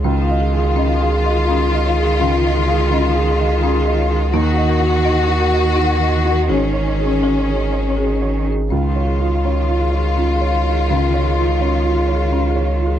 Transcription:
<<
  \new Staff \with { instrumentName = "Felt piano" } { \time 3/4 \key des \major \tempo 4 = 83 \tuplet 3/2 { des,8 ees''8 aes'8 ees''8 aes'8 ees''8 aes'8 ees''8 aes'8 } | \tuplet 3/2 { des,8 ees''8 aes'8 ees''8 aes'8 ees''8 aes'8 ees''8 aes'8 } | \tuplet 3/2 { ees,8 ees''8 ges'8 ees''8 ges'8 ees''8 ges'8 ees''8 ges'8 } | \tuplet 3/2 { aes,8 des''8 aes'8 des''8 aes'8 des''8 aes'8 des''8 aes'8 } |
\tuplet 3/2 { des,8 des''8 f'8 des''8 f'8 des''8 f'8 des''8 f'8 } | \tuplet 3/2 { des,8 des''8 f'8 des''8 f'8 des''8 f'8 des''8 f'8 } | }
  \new Staff \with { instrumentName = "Marimba" } { \time 3/4 \key des \major des'16 f'16 aes'16 f'16 des'16 f'16 aes'16 aes'16 des'16 aes'16 des''16 aes'16 | des'16 f'16 aes'16 f'16 des'16 f'16 aes'16 aes'16 des'16 aes'16 des''16 aes'16 | ees'16 ges'16 bes'16 ges'16 ees'16 ges'16 bes'16 bes'16 ees'16 bes'16 ees''16 bes'16 | aes'16 des''16 ees''16 des''16 aes'16 des''16 ees''16 ees''16 aes'16 ees''16 aes''16 ees''16 |
des'16 f'16 aes'16 f'16 des'16 f'16 aes'16 aes'16 des'16 aes'16 des''16 aes'16 | des'16 f'16 aes'16 f'16 des'16 f'16 aes'16 aes'16 des'16 aes'16 des''16 aes'16 | }
  \new Staff \with { instrumentName = "Violin section" } { \time 3/4 \key des \major f'2.~ | f'2. | ges'2. | des'2~ des'8 r8 |
f'2.~ | f'2. | }
  \new Staff \with { instrumentName = "Cello" } { \clef bass \time 3/4 \key des \major ees2.~ | ees2. | ees2.~ | ees2~ ees8 r8 |
ees2.~ | ees2. | }
  \new Staff \with { instrumentName = "Sub bass" } { \clef bass \time 3/4 \key des \major des,2.~ | des,2. | ees,2. | aes,,2. |
des,2.~ | des,2. | }
>>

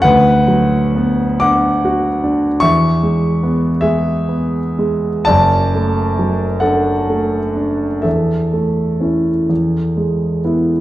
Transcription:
<<
  \new Staff \with { instrumentName = "Grand piano" } { \time 12/8 \key e \mixolydian \tempo 4. = 44 <b' fis''>4. <fis'' d'''>4. <e'' cis'''>4. <gis' e''>4. | <d'' a''>4. <a' fis''>4. <a' e''>2~ <a' e''>8 r8 | }
  \new Staff \with { instrumentName = "Grand piano" } { \time 12/8 \key e \mixolydian d,8 fis8 b8 d'8 fis'8 d'8 e,8 gis8 b8 gis8 b8 gis8 | <fis,, fis,>8 a8 fis8 d'8 a8 d'8 e,8 a8 <cis' e'>8 e,8 gis8 <b e'>8 | }
>>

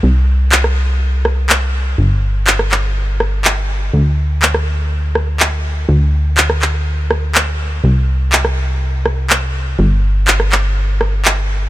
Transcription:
<<
  \new Staff \with { instrumentName = "Analog synth bass" } { \clef bass \time 4/4 \key g \mixolydian \tempo 4 = 123 c,1 | g,,1 | d,1 | d,1 |
c,1 | g,,1 | }
  \new DrumStaff \with { instrumentName = "Drums" } \drummode { \time 4/4 r4 hc16 ss8. r8 ss8 hc4 | r4 hc16 ss16 hc8 r8 ss8 hc4 | r4 hc16 ss8. r8 ss8 hc4 | r4 hc16 ss16 hc8 r8 ss8 hc4 |
r4 hc16 ss8. r8 ss8 hc4 | r4 hc16 ss16 hc8 r8 ss8 hc4 | }
>>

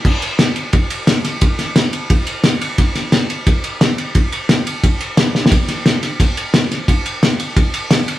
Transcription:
\new DrumStaff \with { instrumentName = "Drums" } \drummode { \time 4/4 \tempo 4 = 176 <cymc bd>8 cymr8 <cymr sn>8 cymr8 <bd cymr>8 cymr8 <cymr sn>8 <cymr sn>8 | <bd cymr>8 <cymr sn>8 <cymr sn>8 cymr8 <bd cymr>8 cymr8 <cymr sn>8 cymr8 | <bd cymr>8 <cymr sn>8 <cymr sn>8 cymr8 <bd cymr>8 cymr8 <cymr sn>8 cymr8 | <bd cymr>8 cymr8 <cymr sn>8 cymr8 <bd cymr>8 cymr8 \tuplet 3/2 { <cymr sn>16 r16 r16 sn16 r16 sn16 } |
<bd cymr>8 <cymr sn>8 <cymr sn>8 <cymr sn>8 <bd cymr sn>8 cymr8 <cymr sn>8 <cymr sn>8 | <bd cymr>8 cymr8 <cymr sn>8 cymr8 <bd cymr>8 cymr8 <cymr sn>8 cymr8 | }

